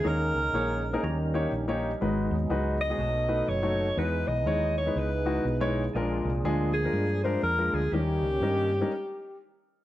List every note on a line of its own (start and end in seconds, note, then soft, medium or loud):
0.00 0.99 G#3 medium
0.00 0.37 A#3 medium
0.00 1.01 C#4 medium
0.00 1.01 A#4 medium
0.04 0.30 D#2 medium
0.04 0.80 D#3 medium
0.04 1.01 G#3 medium
0.04 2.00 A#3 medium
0.04 1.01 C#4 medium
0.04 0.37 D#4 medium
0.04 1.01 D#4 medium
0.04 5.92 D#4 medium
0.04 0.38 G#4 medium
0.04 1.04 A#4 medium
0.04 0.38 C#5 medium
0.35 0.51 C#2 medium
0.53 0.95 A#1 medium
0.53 0.80 A#3 medium
0.53 0.80 D#4 medium
0.53 0.80 G#4 medium
0.53 0.80 C#5 medium
0.93 1.03 A#3 medium
0.93 1.03 D#4 medium
0.93 1.03 G#4 medium
0.93 1.03 A#4 medium
1.03 1.45 D#2 medium
1.03 1.79 D#3 medium
1.03 1.10 F#3 medium
1.03 2.02 G3 medium
1.03 2.00 C#4 medium
1.03 2.01 C#4 medium
1.03 2.00 D#4 medium
1.03 2.00 A#4 medium
1.09 2.02 G3 medium
1.34 1.50 A#3 medium
1.34 1.50 D#4 medium
1.34 1.50 G4 medium
1.34 1.51 C#5 medium
1.52 1.94 A#1 medium
1.68 1.90 A#3 medium
1.68 1.90 D#4 medium
1.68 1.90 G4 medium
1.68 1.90 C#5 medium
2.01 2.27 G#1 medium
2.01 2.77 G#2 medium
2.01 3.97 F#3 medium
2.01 2.98 F#3 medium
2.01 2.34 G#3 medium
2.01 3.00 G#3 medium
2.01 2.09 A#3 medium
2.01 5.92 B3 medium
2.01 2.98 D#4 medium
2.01 2.35 D#4 medium
2.01 2.35 F#4 medium
2.01 2.98 G#4 medium
2.01 2.35 B4 medium
2.08 2.98 B3 medium
2.31 2.47 D#2 medium
2.50 2.92 C#2 medium
2.50 2.76 G#3 medium
2.50 2.77 D#4 medium
2.50 2.77 F#4 medium
2.50 2.77 B4 medium
2.81 3.50 D#5 loud
2.90 3.00 G#3 medium
2.90 3.00 D#4 medium
2.90 3.00 F#4 medium
2.90 3.00 G#4 medium
2.98 3.41 B1 loud
2.98 3.74 B2 medium
2.98 3.96 F#3 medium
2.98 3.98 A3 medium
2.98 3.96 B3 medium
2.98 3.96 D#4 medium
2.98 3.96 A4 medium
3.28 3.46 A3 medium
3.28 3.46 D#4 medium
3.28 3.46 F#4 medium
3.28 3.46 B4 medium
3.48 3.90 F#1 medium
3.48 3.99 C#5 medium
3.62 3.86 A3 medium
3.62 3.85 D#4 medium
3.62 3.86 F#4 medium
3.62 3.86 C#5 medium
3.97 4.23 E2 medium
3.97 5.93 B2 medium
3.97 4.73 E3 medium
3.97 4.31 G#3 medium
3.97 5.91 B3 medium
3.97 4.31 D#4 medium
3.97 5.92 D#4 medium
3.97 4.31 E4 medium
3.97 5.92 E4 medium
3.97 4.05 F#4 medium
3.97 7.89 G#4 medium
3.97 4.29 B4 medium
3.97 4.31 B4 medium
4.04 5.93 G#4 medium
4.28 4.47 B1 medium
4.28 4.77 D#5 medium
4.46 4.89 D#2 medium
4.46 4.73 G#3 medium
4.46 4.73 D#4 medium
4.46 4.73 E4 medium
4.46 4.73 C#5 medium
4.78 4.99 C#5 medium
4.86 5.08 G#3 medium
4.86 5.08 D#4 medium
4.86 5.08 E4 medium
4.86 5.08 B4 medium
4.96 5.38 C#2 medium
4.96 5.77 B4 medium
5.25 5.43 G#3 medium
5.25 5.43 D#4 medium
5.25 5.43 E4 medium
5.25 5.43 F#4 medium
5.45 5.87 B1 medium
5.60 5.83 G#3 medium
5.60 5.83 D#4 medium
5.60 5.83 E4 medium
5.60 5.83 C#5 medium
5.94 6.20 A#1 loud
5.94 6.71 A#2 medium
5.94 7.87 F3 medium
5.94 7.90 F3 medium
5.94 6.29 G#3 medium
5.94 7.88 A#3 medium
5.94 8.88 A#3 medium
5.94 7.88 D4 medium
5.94 7.90 D4 medium
5.94 6.29 D4 medium
5.94 6.29 F4 medium
5.94 7.88 G#4 medium
5.94 6.29 A#4 medium
6.25 6.42 C2 loud
6.44 6.86 D2 medium
6.44 6.71 G#3 medium
6.44 6.71 D4 medium
6.44 6.71 F4 medium
6.44 6.71 G#4 medium
6.73 7.20 G#4 medium
6.84 7.05 G#3 medium
6.84 7.05 D4 medium
6.84 7.05 F4 medium
6.84 7.06 A#4 medium
6.93 7.35 G2 medium
7.24 7.41 G#3 medium
7.24 7.41 D4 medium
7.24 7.41 F4 medium
7.24 7.41 A#4 medium
7.24 7.42 C5 medium
7.43 7.69 F2 loud
7.43 7.75 A#4 loud
7.58 7.80 G#3 medium
7.58 7.80 D4 medium
7.58 7.81 F4 medium
7.58 7.81 A#4 medium
7.73 7.90 D2 medium
7.73 7.94 G#4 medium
7.92 8.18 D#2 loud
7.92 8.89 D#3 medium
7.92 8.90 D#3 medium
7.92 8.68 D#3 medium
7.92 8.26 G3 medium
7.92 8.90 G3 medium
7.92 8.89 A#3 medium
7.92 8.89 C#4 medium
7.92 8.26 C#4 medium
7.92 8.91 C#4 medium
7.92 8.26 D#4 medium
7.92 7.99 E4 medium
7.92 9.40 G4 medium
7.92 8.26 A#4 medium
7.98 8.92 G4 medium
8.21 8.38 C#2 medium
8.41 8.83 G2 medium
8.41 8.68 G3 medium
8.41 8.68 C#4 medium
8.41 8.68 D#4 medium
8.41 8.68 A#4 medium
8.81 8.91 G3 medium
8.81 8.91 C#4 medium
8.81 8.91 D#4 medium
8.81 8.91 A#4 medium